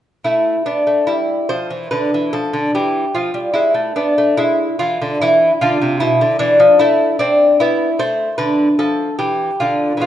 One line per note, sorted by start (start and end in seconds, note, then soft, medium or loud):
0.24 0.55 A3 medium
0.24 0.65 E4 medium
0.66 0.86 B3 medium
0.66 1.06 D4 medium
0.87 1.07 A3 medium
1.07 1.38 G3 medium
1.07 1.48 E4 medium
1.49 1.70 F3 medium
1.49 1.90 C5 medium
1.70 1.91 E3 medium
1.91 2.12 D3 medium
1.91 2.31 B4 medium
2.14 2.33 E3 medium
2.33 2.53 F3 medium
2.33 2.73 A4 medium
2.53 2.73 D3 medium
2.75 3.04 E3 medium
2.75 3.14 G4 medium
3.15 3.34 F3 medium
3.15 3.53 F4 medium
3.34 3.54 G3 medium
3.54 3.75 G#3 medium
3.54 3.94 E4 medium
3.74 3.95 A3 medium
3.96 4.16 B3 medium
3.96 4.36 D4 medium
4.18 4.37 A3 medium
4.37 4.68 G#3 medium
4.37 4.77 E4 medium
4.79 4.99 E3 medium
4.79 5.18 F4 medium
5.02 5.20 D3 medium
5.21 5.50 E3 medium
5.21 5.59 E4 loud
5.61 5.80 D3 medium
5.61 5.99 F4 medium
5.82 6.00 C3 medium
6.00 6.19 B2 medium
6.00 6.38 E4 medium
6.21 6.39 D3 medium
6.39 6.59 E3 medium
6.39 6.78 D4 loud
6.60 6.79 F3 medium
6.79 7.09 A3 medium
6.79 7.18 E4 medium
7.19 7.49 C4 medium
7.19 7.58 D4 loud
7.60 7.89 B3 medium
7.60 7.97 E4 medium
7.99 8.28 A3 medium
7.99 8.37 C5 loud
8.38 8.67 D3 medium
8.38 8.77 B4 medium
8.79 9.09 F3 medium
8.79 9.18 A4 medium
9.19 9.50 E3 medium
9.19 9.60 G4 medium
9.60 9.92 D3 medium
9.60 10.00 F4 medium
9.97 10.06 E3 medium
9.97 10.06 G#3 soft
9.97 10.06 B3 soft
10.02 10.06 F4 medium